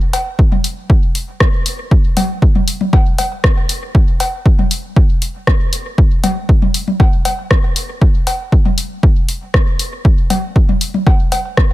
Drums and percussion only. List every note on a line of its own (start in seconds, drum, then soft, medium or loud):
0.13 open hi-hat medium
0.13 cowbell medium
0.39 kick loud
0.52 high tom medium
0.64 open hi-hat medium
0.90 kick loud
1.15 open hi-hat medium
1.40 kick loud
1.40 cross-stick medium
1.66 open hi-hat medium
1.91 kick loud
2.17 open hi-hat medium
2.17 high tom medium
2.17 cowbell medium
2.42 kick loud
2.55 high tom medium
2.68 open hi-hat medium
2.81 high tom medium
2.93 kick loud
2.93 cowbell medium
3.18 open hi-hat medium
3.18 cowbell medium
3.44 kick loud
3.44 cross-stick medium
3.69 open hi-hat medium
3.95 kick loud
4.20 open hi-hat medium
4.20 cowbell medium
4.46 kick loud
4.59 high tom medium
4.71 open hi-hat medium
4.96 kick loud
5.22 open hi-hat medium
5.47 kick loud
5.47 cross-stick medium
5.73 open hi-hat medium
5.98 kick loud
6.24 open hi-hat medium
6.24 high tom medium
6.24 cowbell medium
6.49 kick loud
6.62 high tom medium
6.74 open hi-hat medium
6.88 high tom medium
7.00 kick loud
7.00 cowbell medium
7.25 open hi-hat medium
7.25 cowbell medium
7.51 kick loud
7.51 cross-stick medium
7.76 open hi-hat medium
8.02 kick loud
8.27 open hi-hat medium
8.27 cowbell medium
8.52 kick loud
8.65 high tom medium
8.78 open hi-hat medium
9.03 kick loud
9.29 open hi-hat medium
9.54 kick loud
9.54 cross-stick medium
9.79 open hi-hat medium
10.05 kick loud
10.30 open hi-hat medium
10.30 high tom medium
10.30 cowbell medium
10.56 kick loud
10.69 high tom medium
10.81 open hi-hat medium
10.94 high tom medium
11.07 kick loud
11.07 cowbell medium
11.32 open hi-hat medium
11.32 cowbell medium
11.57 kick loud
11.57 cross-stick medium